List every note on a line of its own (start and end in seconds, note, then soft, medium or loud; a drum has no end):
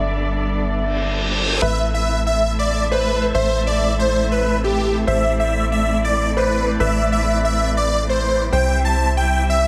0.00 1.60 G1 medium
0.00 1.58 G3 medium
0.00 1.59 B3 medium
0.00 1.59 D4 medium
0.00 1.59 A4 medium
0.00 1.59 D5 medium
0.00 1.53 E5 medium
0.76 reverse cymbal medium
1.62 3.32 A1 medium
1.62 8.49 A3 medium
1.62 9.68 C4 medium
1.62 9.68 E4 medium
1.62 8.49 A4 medium
1.62 2.18 B4 medium
1.62 1.87 E5 medium
1.62 1.87 E5 loud
1.62 5.04 E5 medium
1.94 2.19 E5 medium
1.94 2.20 E5 medium
2.27 2.52 E5 medium
2.59 2.84 D5 medium
2.91 3.25 B4 medium
2.91 3.33 C5 medium
3.34 5.05 A1 medium
3.34 3.60 C5 loud
3.34 4.99 E5 medium
3.67 3.92 D5 loud
3.67 3.92 D5 medium
3.99 4.25 C5 medium
4.32 4.57 B4 medium
4.64 4.98 G4 medium
5.07 6.78 A1 medium
5.07 5.63 C5 medium
5.07 8.49 D5 medium
5.07 5.33 E5 loud
5.40 5.65 E5 loud
5.40 5.65 E5 medium
5.72 5.97 E5 medium
6.04 6.30 D5 medium
6.37 6.70 B4 loud
6.37 6.70 B4 medium
6.37 6.78 C5 medium
6.80 8.51 A1 medium
6.80 8.44 B4 medium
6.80 7.05 E5 medium
6.80 7.05 E5 loud
7.12 7.37 E5 medium
7.12 7.38 E5 medium
7.45 7.70 E5 medium
7.77 8.02 D5 medium
8.09 8.43 C5 medium
8.53 9.68 C2 medium
8.53 9.68 G3 medium
8.53 9.68 G4 medium
8.53 9.09 C5 medium
8.53 9.68 E5 medium
8.53 8.78 G5 loud
8.85 9.10 A5 loud
8.85 9.10 A5 medium
9.17 9.42 G5 medium
9.17 9.43 G5 medium
9.50 9.68 E5 medium
9.50 9.68 E5 loud